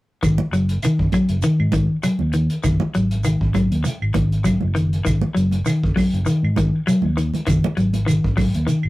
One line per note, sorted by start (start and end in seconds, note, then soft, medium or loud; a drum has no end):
0.23 0.37 G#1 medium
0.23 0.45 D#3 medium
0.23 kick medium
0.23 closed hi-hat medium
0.23 claves medium
0.23 shekere medium
0.38 high conga medium
0.52 0.78 F#1 medium
0.52 0.75 F#3 medium
0.52 closed hi-hat soft
0.52 shekere soft
0.69 closed hi-hat soft
0.82 1.06 D#3 medium
0.82 muted fingered electric bass stroke soft
0.82 closed hi-hat medium
0.82 claves medium
0.82 shekere medium
0.99 1.11 F#1 medium
0.99 kick medium
1.12 1.36 F#3 medium
1.12 muted fingered electric bass stroke soft
1.12 kick medium
1.12 closed hi-hat soft
1.12 high conga medium
1.12 claves medium
1.12 shekere soft
1.29 1.41 F#1 medium
1.29 closed hi-hat soft
1.42 1.66 D#3 medium
1.42 closed hi-hat medium
1.42 shekere medium
1.59 1.85 G#2 medium
1.59 claves medium
1.72 1.95 D#3 medium
1.72 kick medium
1.72 closed hi-hat soft
1.72 high conga medium
1.72 shekere soft
2.03 2.26 F#3 medium
2.03 closed hi-hat medium
2.03 claves medium
2.03 shekere medium
2.19 2.46 D#2 medium
2.19 high conga medium
2.33 2.56 D#3 medium
2.33 closed hi-hat soft
2.33 shekere soft
2.50 closed hi-hat soft
2.64 2.78 F#1 medium
2.64 2.86 D#3 medium
2.64 kick medium
2.64 closed hi-hat medium
2.64 claves medium
2.64 shekere medium
2.80 high conga medium
2.94 3.35 G#1 medium
2.94 3.17 F#3 medium
2.94 closed hi-hat soft
2.94 shekere soft
3.11 closed hi-hat soft
3.24 3.47 D#3 medium
3.24 closed hi-hat medium
3.24 claves medium
3.24 shekere medium
3.41 3.67 G#1 medium
3.41 kick medium
3.54 3.77 F#3 medium
3.54 kick medium
3.54 closed hi-hat soft
3.54 high conga medium
3.54 claves medium
3.54 shekere soft
3.71 3.83 D#2 medium
3.71 closed hi-hat soft
3.84 muted clean electric guitar stroke medium
3.84 closed hi-hat medium
3.84 high conga medium
3.84 shekere medium
4.02 4.14 G#1 medium
4.02 claves medium
4.14 4.55 G#1 medium
4.14 4.37 D#3 medium
4.14 kick medium
4.14 closed hi-hat soft
4.14 high conga medium
4.14 shekere soft
4.32 closed hi-hat soft
4.44 4.67 F#3 medium
4.44 kick medium
4.44 closed hi-hat medium
4.44 claves medium
4.44 shekere medium
4.61 5.00 F#1 medium
4.61 high conga medium
4.75 4.97 D#3 medium
4.75 closed hi-hat soft
4.75 shekere soft
4.93 closed hi-hat soft
5.05 5.21 G#1 medium
5.05 5.27 D#3 medium
5.05 kick medium
5.05 closed hi-hat medium
5.05 claves medium
5.05 shekere medium
5.21 high conga medium
5.35 5.62 F#1 medium
5.35 5.57 F#3 medium
5.35 closed hi-hat soft
5.35 shekere soft
5.51 closed hi-hat soft
5.51 high conga medium
5.66 5.88 D#3 medium
5.66 muted fingered electric bass stroke soft
5.66 closed hi-hat medium
5.66 claves medium
5.66 shekere medium
5.83 5.95 F#1 medium
5.83 kick medium
5.96 6.18 F#3 medium
5.96 muted fingered electric bass stroke soft
5.96 kick medium
5.96 open hi-hat medium
5.96 high conga medium
5.96 claves medium
5.96 shekere soft
6.13 6.25 F#1 medium
6.13 closed hi-hat soft
6.26 6.48 D#3 medium
6.26 closed hi-hat medium
6.26 shekere medium
6.43 6.69 G#2 medium
6.43 claves medium
6.56 6.79 D#3 medium
6.56 kick medium
6.56 closed hi-hat medium
6.56 high conga medium
6.56 shekere soft
6.87 7.09 F#3 medium
6.87 closed hi-hat medium
6.87 claves medium
6.87 shekere medium
7.02 7.30 D#2 medium
7.02 high conga medium
7.17 7.39 D#3 medium
7.17 closed hi-hat soft
7.17 shekere soft
7.34 closed hi-hat soft
7.34 high conga medium
7.47 7.62 F#1 medium
7.47 7.69 D#3 medium
7.47 kick medium
7.47 closed hi-hat medium
7.47 claves medium
7.47 shekere medium
7.64 high conga medium
7.77 8.17 G#1 medium
7.77 7.99 F#3 medium
7.77 closed hi-hat soft
7.77 shekere soft
7.93 closed hi-hat medium
7.93 high conga medium
8.06 8.29 D#3 medium
8.06 closed hi-hat medium
8.06 claves medium
8.06 shekere medium
8.24 8.50 G#1 medium
8.24 kick medium
8.37 8.59 F#3 medium
8.37 kick medium
8.37 open hi-hat medium
8.37 high conga medium
8.37 claves medium
8.37 shekere soft
8.54 8.67 D#2 medium
8.54 closed hi-hat soft
8.67 8.89 D#3 medium
8.67 closed hi-hat medium
8.67 shekere medium
8.83 8.89 G#1 medium
8.83 claves medium